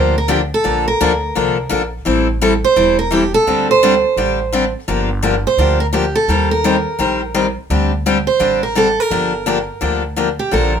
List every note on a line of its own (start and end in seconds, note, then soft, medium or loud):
0.00 0.51 D2 medium
0.00 0.15 D3 medium
0.00 0.15 F3 medium
0.00 0.15 A#3 medium
0.00 0.15 D4 medium
0.00 0.15 G4 medium
0.00 0.17 C5 medium
0.18 0.30 A#4 medium
0.28 0.40 D3 medium
0.28 0.40 F3 medium
0.28 0.40 A#3 medium
0.28 0.40 D4 medium
0.28 0.40 G4 medium
0.28 0.36 G4 medium
0.54 0.87 A4 medium
0.64 0.93 A#1 medium
0.64 0.85 D3 medium
0.64 0.85 F3 medium
0.64 0.85 A#3 medium
0.64 0.85 D4 medium
0.64 0.86 A4 medium
0.88 1.89 A#4 medium
1.01 1.30 D2 medium
1.01 1.11 D3 medium
1.01 1.11 F3 medium
1.01 1.11 A#3 medium
1.01 1.12 D4 medium
1.01 1.12 A4 medium
1.35 1.66 C2 medium
1.35 1.56 D3 medium
1.35 1.56 F3 medium
1.35 1.56 A#3 medium
1.35 1.56 D4 medium
1.35 1.56 A4 medium
1.69 2.01 A#1 medium
1.69 1.81 D3 medium
1.69 1.81 F3 medium
1.69 1.81 A#3 medium
1.69 1.81 D4 medium
1.69 1.82 A4 medium
2.05 2.63 A1 medium
2.05 2.26 E3 medium
2.05 2.26 G3 medium
2.05 2.26 C4 medium
2.05 2.27 E4 medium
2.05 2.27 A4 medium
2.41 2.52 E3 medium
2.41 2.52 G3 medium
2.41 2.52 C4 medium
2.41 2.53 E4 medium
2.41 2.53 A4 medium
2.64 2.98 C5 medium
2.76 3.33 E1 medium
2.76 2.97 E3 medium
2.76 2.97 G3 medium
2.76 2.97 C4 medium
2.76 2.97 E4 medium
2.76 2.97 A4 medium
2.99 3.13 A#4 medium
3.11 3.22 E3 medium
3.11 3.23 G3 medium
3.11 3.23 C4 medium
3.11 3.23 E4 medium
3.11 3.34 G4 medium
3.11 3.23 A4 medium
3.34 3.66 A4 medium
3.47 4.03 D2 medium
3.47 3.68 D3 medium
3.47 3.68 G3 medium
3.47 3.68 C4 medium
3.47 3.68 D4 medium
3.47 3.68 G4 medium
3.71 4.71 C5 medium
3.83 3.93 D3 medium
3.83 3.93 G3 medium
3.83 3.94 C4 medium
3.83 3.93 D4 medium
3.83 3.94 G4 medium
4.16 4.73 A1 medium
4.16 4.38 D3 medium
4.16 4.38 G3 medium
4.16 4.38 C4 medium
4.16 4.38 D4 medium
4.16 4.38 G4 medium
4.53 4.64 D3 medium
4.53 4.64 G3 medium
4.53 4.64 C4 medium
4.53 4.64 D4 medium
4.53 4.64 G4 medium
4.88 5.44 G1 medium
4.88 5.09 D3 medium
4.88 5.09 F3 medium
4.88 5.09 A#3 medium
4.88 5.09 D4 medium
4.88 5.09 G4 medium
5.22 5.34 D3 medium
5.22 5.34 F3 medium
5.22 5.34 A#3 medium
5.22 5.34 D4 medium
5.22 5.34 G4 medium
5.47 5.80 C5 medium
5.58 6.14 D2 medium
5.58 5.79 D3 medium
5.58 5.79 F3 medium
5.58 5.79 A#3 medium
5.58 5.79 D4 medium
5.58 5.80 G4 medium
5.80 5.85 A#4 medium
5.93 6.04 D3 medium
5.93 6.04 F3 medium
5.93 6.04 A#3 medium
5.93 6.05 D4 medium
5.93 6.05 G4 medium
5.93 6.16 G4 medium
6.16 6.51 A4 medium
6.28 6.85 D#2 medium
6.28 6.49 D#3 medium
6.28 6.50 G3 medium
6.28 6.50 C4 medium
6.28 6.50 G4 medium
6.28 6.50 C5 medium
6.51 7.53 A#4 medium
6.64 6.75 D#3 medium
6.64 6.75 G3 medium
6.64 6.76 C4 medium
6.64 6.76 G4 medium
6.64 6.76 C5 medium
6.99 7.56 A#1 medium
6.99 7.20 D#3 medium
6.99 7.20 G3 medium
6.99 7.20 C4 medium
6.99 7.20 G4 medium
6.99 7.21 C5 medium
7.34 7.46 D#3 medium
7.34 7.46 G3 medium
7.34 7.46 C4 medium
7.34 7.46 G4 medium
7.34 7.46 C5 medium
7.70 8.26 D2 medium
7.70 7.91 D3 medium
7.70 7.91 G3 medium
7.70 7.91 C4 medium
7.70 7.91 D4 medium
7.70 7.91 G4 medium
8.06 8.17 D3 medium
8.06 8.17 G3 medium
8.06 8.17 C4 loud
8.06 8.17 D4 medium
8.06 8.17 G4 medium
8.27 8.60 C5 medium
8.40 8.97 A1 medium
8.40 8.61 D3 medium
8.40 8.61 G3 medium
8.40 8.61 C4 medium
8.40 8.61 D4 medium
8.40 8.61 G4 medium
8.63 8.77 A#4 medium
8.75 8.87 D3 medium
8.75 8.87 G3 medium
8.75 8.87 C4 medium
8.75 8.87 D4 medium
8.75 8.87 G4 medium
8.75 9.00 A4 medium
9.00 10.18 A#4 medium
9.11 9.67 G1 medium
9.11 9.32 D3 medium
9.11 9.32 F3 medium
9.11 9.32 A#3 medium
9.11 9.32 D4 medium
9.11 9.32 G4 medium
9.46 9.57 D3 medium
9.46 9.57 F3 medium
9.46 9.58 A#3 medium
9.46 9.57 D4 medium
9.46 9.58 G4 loud
9.81 10.38 D2 medium
9.81 10.02 D3 medium
9.81 10.02 F3 medium
9.81 10.02 A#3 medium
9.81 10.02 D4 medium
9.81 10.02 G4 medium
10.16 10.27 D3 medium
10.16 10.28 F3 medium
10.16 10.28 A#3 medium
10.16 10.28 D4 medium
10.16 10.28 G4 medium
10.39 10.53 G4 medium
10.51 10.80 A#1 medium
10.51 10.72 D3 medium
10.51 10.72 F3 medium
10.51 10.73 A#3 medium
10.51 10.73 D4 medium
10.51 10.73 A4 medium
10.51 10.80 A#4 medium